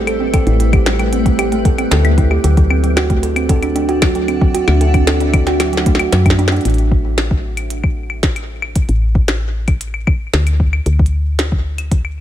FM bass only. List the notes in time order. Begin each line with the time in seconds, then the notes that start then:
Already playing: A1
0.47 A1
1.91 D2
2.44 D2
4.68 D2
6.13 F#2
6.65 A1
8.89 A1
10.33 D2
10.86 D2